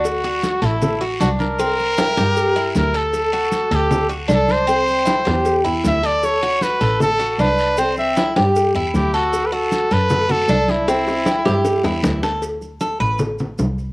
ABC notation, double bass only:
X:1
M:4/4
L:1/8
Q:1/4=155
K:D
V:1 name="Double bass" clef=bass
D,,3 A,,,3 =C,,2- | =C,,3 G,,3 D,,2- | D,,3 D,,3 =C,,2- | =C,,3 E,,2 E,, D,,2- |
D,,3 A,,,3 =C,,2- | =C,,3 G,,2 E,, D,,2- | D,,3 F,,3 =C,,2- | =C,,3 G,,2 E,, D,,2- |
D,,3 A,,,3 =C,,2 |]